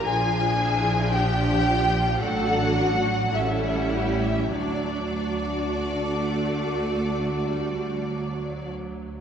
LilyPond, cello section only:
\new Staff \with { instrumentName = "Cello section" } { \time 4/4 \key d \major \tempo 4 = 51 f'8 e'8 d'8 f'8 a'8 fis'8 a'8 g'8 | fis'2.~ fis'8 r8 | }